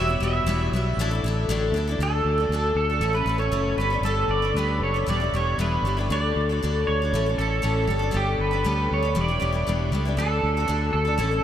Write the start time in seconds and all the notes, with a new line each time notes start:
Already playing: E1 E5
0.07 G3 B3 E4 F#4
0.20 E1 G3 B3 E4 F#4 E5
0.44 E1 E2 E3 G3 B3
0.49 E4 F#4
0.72 B1 G3 B3 F#4
0.77 E4
0.97 A1 A2 D3 D4 E4
1.01 A4
1.11 D4 E4 A4
1.23 A1 D3 D4 E4
1.28 A4
1.48 A1 A2 D3 D4 E4 A4
1.72 D2 D3 D4
1.77 E4 A4
1.88 D4 E4 A4
1.99 D2 D3 D4 F#4 A4
2.25 D2
2.38 D4 F#4 A4
2.49 D2 D3
2.53 D4 F#4 A4
2.75 D2 A4
2.90 D4 F#4 A4
3.00 A1 A2 A3 C#4 E4 A4
3.13 C#4 E4 A4 B4
3.25 A1 A3 C#4 E4 A4
3.38 C#4 E4 A4 C#5
3.50 F#1 A2 A3 C#4 E4 A4
3.77 G1 G3 B3 D4 A4 B4
3.90 B3 D4 A4
4.01 G1 G3 D4
4.05 B3 A4
4.28 G1 D5
4.42 B3 D4 A4
4.54 D2 G3 D4 B4
4.58 B3 A4
4.80 F#1 C#5
4.94 B3 D4 A4
5.06 E1 E2 E3 G3 B3 D4 E4 D5
5.20 G3 B3 D4 E4
5.32 E1 G3 B3 D4 E4 C#5
5.58 E1 E2 E3 G3 B3 D4 E4 B4
5.82 G1 G3 D4
5.87 B3 E4
5.97 G3 B3 D4 E4
6.10 D2 D3 D4 F#4 A4 D5
6.36 D2
6.49 D4 F#4 A4
6.62 D2 D3 D4 F#4 A4
6.87 D2 C#5
7.02 D4 F#4 A4
7.13 A1 A2 A3 C#4 E4 A4
7.26 C#4 E4 A4
7.38 A1 A3 C#4 E4 A4
7.62 A1 A2 A3 C#4 E4 A4
7.87 G1 G3 B3 D4 A4
7.99 B3 D4 A4
8.11 G1 G3 B3 D4 A4
8.17 G4
8.38 G1 B4
8.51 B3 D4 A4
8.64 D2 G3 B3 D4 A4
8.91 D2 C#5
9.03 B3 D4 A4
9.15 E1 E2 E3 G3 B3 D4 E4
9.21 D5
9.28 G3 B3 D4 E4
9.40 E1 G3 B3 D4 E4
9.52 G3 B3 D4 E4
9.67 E1 E2 E3 G3 B3 D4 E4
9.91 C#2 G3 B3 D4 E4
10.05 G3 B3 D4 E4
10.17 D2 D3 D4 F#4 A4
10.43 D2
10.57 D4 F#4 A4
10.68 D2 D3 D4 F#4 A4
10.93 D2 A4
11.05 D4 F#4 A4
11.18 A1 A2 A3 C#4 E4 A4
11.31 C#4 E4 A4